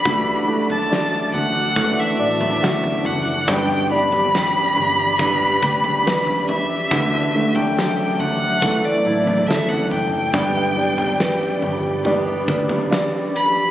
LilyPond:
<<
  \new Staff \with { instrumentName = "Violin" } { \time 4/4 \key g \major \tempo 4 = 70 b''8. a''8. fis''8. e''4~ e''16 fis''8 | g''8 b''2. e''8~ | e''8. g''8. fis''8. d''8. e''16 fis''16 g''8~ | g''2~ g''8 r4 b''8 | }
  \new Staff \with { instrumentName = "Ambient pad" } { \time 4/4 \key g \major << { d'''1~ | d'''1~ | d'''1~ | d'''1 | } \\ { <fis' e'' a''>1 | <g' d'' b''>1 | <fis e'' a''>1 | <g' d'' b''>1 | } >> }
  \new Staff \with { instrumentName = "Grand piano" } { \time 4/4 \key g \major d8 a8 d'4 a8 d'8 fis'4 | g8 d'8 g'4 d'8 g'8 b'4 | d8 a8 fis4 a8 e'8 a'4 | g8 d'8 b'4 d'8 b'8 d''4 | }
  \new Staff \with { instrumentName = "Steel-string acoustic guitar" } { \time 4/4 \key g \major <d e a d' fis'>8 <a d' fis'>4. <e a d' fis'>2 | <g, d g b d' g'>8 <g b d' g'>4. <g b d' g'>2 | <d e a d' fis'>8 <a d'>4. <e a d'>2 | <g, d g b d' g'>8 <g b d' g'>4. <g b d' g'>2 | }
  \new Staff \with { instrumentName = "Fingered electric bass" } { \clef bass \time 4/4 \key g \major d,4. d,4 a,,8 d,8 fis,,8 | g,,4. g,,4 d,4. | d,4. d,4 a,,8 d,8 fis,,8 | g,,4. g,,4 d,4. | }
  \new DrumStaff \with { instrumentName = "Drums" } \drummode { \time 4/4 <bd tomfh>8. tomfh16 sn8 tomfh8 <bd tomfh>8. tomfh16 sn16 tomfh16 tomfh8 | <bd tomfh>8. tomfh16 sn8 tomfh8 <bd tomfh>8 bd16 tomfh16 sn16 tomfh16 tomfh8 | <bd tomfh>8. tomfh16 sn8 tomfh8 <bd tomfh>8. tomfh16 sn16 tomfh16 tomfh8 | <bd tomfh>8. tomfh16 sn8 tomfh8 tomfh8 bd16 tomfh16 sn4 | }
>>